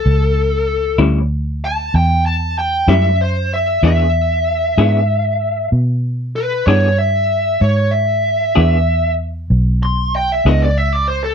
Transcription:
X:1
M:12/8
L:1/16
Q:3/8=64
K:Edor
V:1 name="Lead electric guitar"
A6 z4 a2 g2 a2 g2 e2 =c2 e2 | e12 z4 B2 c2 e4 | c2 e8 z4 =c'2 g e ^d =d e d =c A |]
V:2 name="Clean electric guitar"
z6 [A,,G,CE]2 z8 z2 [A,,G,CE]2 z4 | [E,B,D^G]2 z4 [E,B,DG]2 z8 z2 [E,B,DG]2 z4 | z6 [E,B,D^G]2 z8 z2 [E,B,DG]2 z4 |]
V:3 name="Fingered electric bass" clef=bass
C,,6 D,,6 E,,6 F,,6 | E,,6 ^G,,6 B,,6 =G,,6 | ^G,,6 E,,6 B,,,6 C,,6 |]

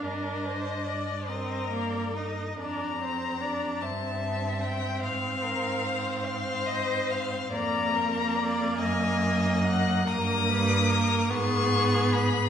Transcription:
X:1
M:6/8
L:1/8
Q:3/8=48
K:Fdor
V:1 name="Violin"
e3 B3 | b3 =a2 g | f3 c3 | [K:Ebm] b3 a2 g |
e'3 d'2 c' |]
V:2 name="Violin"
B c d e d e | d c d =e3 | c B c f e f | [K:Ebm] =d B d e3 |
B c B A3 |]
V:3 name="Viola"
D3 C B, E | D C D C3- | C6 | [K:Ebm] B,6 |
B,3 C3 |]
V:4 name="Cello" clef=bass
G,,6 | F,,3 G,,3 | A,,6 | [K:Ebm] F,,3 G,,3 |
=G,,3 A,,3 |]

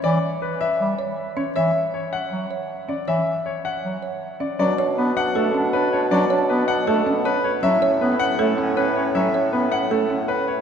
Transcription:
X:1
M:4/4
L:1/8
Q:1/4=158
K:Bm
V:1 name="Grand piano"
d z B e z3 c | e z c f z3 d | e z c f z3 d | d z B f A z B c |
d z B f A z B c | e z B f A z B c | e z B f A z B c |]
V:2 name="Marimba"
c z4 c z C | c z4 c z C | c z4 c z C | C c z2 A C c z |
C c z2 A C c z | C c z2 A C c z | C c z2 A C c z |]
V:3 name="Clarinet"
z8 | z8 | z8 | D D D D D D D D |
D D D D D D D z | C C C C C C C C | C C C C C C C z |]
V:4 name="Bass clarinet" clef=bass
E, z3 G, z3 | E, z3 F, z3 | E, z3 F, z3 | F, z B, z A, z3 |
F, z B, z A, z3 | F, z B, z A, z3 | F, z B, z A, z3 |]
V:5 name="Bassoon" clef=bass
z8 | z8 | z8 | B,,8- |
B,,8 | A,,8- | A,,8 |]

